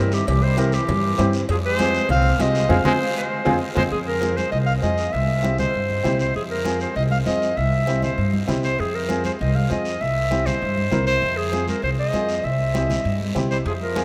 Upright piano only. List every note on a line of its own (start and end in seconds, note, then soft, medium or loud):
0.00 0.18 C4 medium
0.00 0.18 E4 medium
0.00 0.18 G4 medium
0.57 0.78 C4 medium
0.57 0.79 E4 medium
0.57 0.79 G4 medium
1.18 1.39 C4 medium
1.18 1.40 E4 medium
1.18 1.40 G4 medium
1.79 2.00 C4 medium
1.79 2.00 F4 medium
1.79 2.00 G#4 medium
2.39 2.61 C4 medium
2.39 2.61 F4 medium
2.39 2.61 G4 medium
2.69 2.79 C4 loud
2.69 2.79 F4 loud
2.69 2.79 G#4 medium
2.85 2.95 C4 medium
2.85 2.95 F4 medium
2.85 2.95 G#4 loud
3.45 3.55 C4 loud
3.45 3.55 F4 loud
3.45 3.55 G#4 loud
3.75 3.85 C4 medium
3.75 3.86 F4 medium
3.75 3.86 G#4 medium
4.21 4.43 C4 medium
4.21 4.43 F4 medium
4.21 4.43 G#4 medium
4.82 5.04 C4 medium
4.82 5.04 F4 medium
4.82 5.04 G#4 medium
5.42 5.64 C4 medium
5.42 5.65 E4 medium
5.42 5.65 G4 medium
6.03 6.25 C4 medium
6.03 6.26 E4 medium
6.03 6.26 G4 medium
6.64 6.86 C4 medium
6.64 6.86 F4 medium
6.64 6.87 G#4 medium
7.26 7.48 C4 medium
7.26 7.48 F4 medium
7.26 7.48 G#4 medium
7.87 8.09 C4 medium
7.87 8.09 E4 medium
7.87 8.09 G4 medium
8.47 8.69 C4 medium
8.47 8.69 E4 medium
8.47 8.70 G4 medium
9.08 9.30 C4 medium
9.08 9.30 F4 medium
9.08 9.31 G#4 medium
9.69 9.91 C4 medium
9.69 9.91 F4 medium
9.69 9.92 G#4 medium
10.31 10.52 C4 medium
10.31 10.53 E4 medium
10.31 10.53 G4 medium
10.91 11.13 C4 medium
10.91 11.13 E4 medium
10.91 11.13 A#4 medium
11.52 11.74 C4 medium
11.52 11.74 F4 medium
11.52 11.74 G#4 medium
12.14 12.35 C4 medium
12.14 12.35 F4 medium
12.14 12.35 G#4 medium
12.74 12.96 C4 medium
12.74 12.96 E4 medium
12.74 12.96 G4 medium
13.35 13.56 C4 medium
13.35 13.57 E4 medium
13.35 13.57 G4 medium
13.96 14.04 C4 medium
13.96 14.04 F4 medium
13.96 14.04 G#4 medium